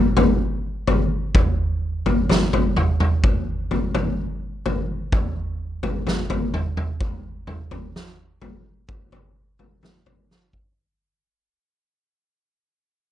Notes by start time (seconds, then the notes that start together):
0.17 floor tom
0.87 floor tom
1.35 kick, floor tom, mid tom
2.06 floor tom
2.29 snare, floor tom
2.53 floor tom
2.77 mid tom
3.00 mid tom
3.24 kick, floor tom
3.71 floor tom
3.95 floor tom
4.66 floor tom
5.12 kick, floor tom, mid tom
5.83 floor tom
6.07 snare, floor tom
6.30 floor tom
6.54 mid tom
6.77 mid tom
7.01 kick, floor tom
7.47 mid tom
7.71 floor tom
7.96 snare
8.42 floor tom
8.89 kick, floor tom
9.12 floor tom
9.59 floor tom
9.83 snare, floor tom
10.06 floor tom
10.31 snare
10.53 kick